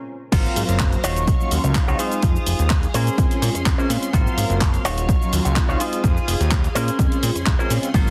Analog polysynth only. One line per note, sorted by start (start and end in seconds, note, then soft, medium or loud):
0.32 1.02 F#3 medium
0.32 1.02 A#3 medium
0.32 1.03 C4 medium
0.32 1.03 F5 medium
1.40 1.49 F#3 medium
1.40 1.50 A#3 medium
1.40 1.50 C#4 medium
1.40 1.50 F4 loud
1.51 1.62 F#3 medium
1.51 1.62 A#3 medium
1.51 1.62 C#4 medium
1.51 1.62 F4 loud
1.64 1.73 F#3 medium
1.64 1.74 A#3 medium
1.64 1.74 C#4 medium
1.64 1.74 F4 medium
2.23 2.35 G#3 medium
2.23 2.35 C4 medium
3.18 3.36 G#3 medium
3.18 3.37 C4 medium
3.18 3.37 C#4 medium
3.18 3.37 F4 medium
3.42 3.54 G#3 medium
3.42 3.54 C4 medium
3.42 3.54 C#4 medium
3.42 3.54 F4 medium
3.78 3.88 G#3 medium
3.78 3.88 C4 medium
3.78 3.88 C#4 medium
3.78 3.88 F4 loud
3.89 4.08 G#3 medium
3.89 4.08 C4 medium
3.89 4.08 C#4 medium
3.89 4.08 F4 loud
4.14 4.84 A#3 medium
4.14 4.84 C4 medium
4.14 4.84 F5 medium
5.21 5.31 F#3 medium
5.21 5.31 A#3 medium
5.21 5.31 C#4 medium
5.21 5.31 F4 loud
5.32 5.43 F#3 medium
5.32 5.43 A#3 medium
5.32 5.43 C#4 medium
5.32 5.44 F4 loud
5.45 5.55 F#3 medium
5.45 5.55 A#3 medium
5.45 5.55 C#4 medium
5.45 5.55 F4 medium
5.56 6.01 G#3 loud
5.56 6.01 C4 medium
5.56 6.02 D#4 medium
5.56 6.02 F4 loud
6.04 6.16 C4 medium
6.04 6.16 D#4 medium
6.99 7.17 G#3 medium
6.99 7.17 C4 medium
6.99 7.18 C#4 medium
6.99 7.18 F4 medium
7.23 7.35 G#3 medium
7.23 7.35 C4 medium
7.23 7.35 C#4 medium
7.23 7.35 F4 medium
7.59 7.69 G#3 medium
7.59 7.69 C4 medium
7.59 7.69 C#4 medium
7.59 7.69 F4 loud
7.70 7.89 G#3 medium
7.70 7.89 C4 medium
7.70 7.89 C#4 medium
7.70 7.89 F4 medium
7.95 8.10 C4 medium